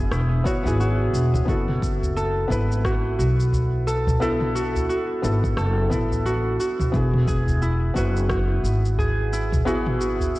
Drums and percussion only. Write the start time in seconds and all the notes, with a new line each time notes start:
0.12 cross-stick, shaker
0.45 kick, mid tom, shaker
0.65 udu, shaker
0.81 shaker
1.15 shaker
1.34 mid tom, udu, shaker
1.48 kick, shaker
1.68 mid tom
1.82 kick, shaker
2.02 udu, shaker
2.17 shaker
2.50 kick, shaker
2.72 shaker
2.84 kick, cross-stick, shaker
3.20 shaker
3.40 shaker
3.53 udu, shaker
3.88 shaker
4.07 mid tom, udu, shaker
4.22 shaker
4.41 mid tom
4.56 shaker
4.76 udu, shaker
4.90 shaker
5.24 shaker
5.44 kick, shaker
5.57 cross-stick, shaker
5.91 kick, mid tom, shaker
6.12 udu, shaker
6.26 shaker
6.60 shaker
6.80 mid tom, udu, shaker
6.94 kick, shaker
7.14 mid tom
7.28 kick, shaker
7.49 udu, shaker
7.62 shaker
7.96 kick, shaker
8.17 shaker
8.30 kick, cross-stick, shaker
8.65 shaker
8.85 shaker
8.98 udu, shaker
9.33 shaker
9.52 mid tom, udu, shaker
9.67 shaker
9.87 mid tom
10.01 shaker
10.20 udu, shaker
10.36 shaker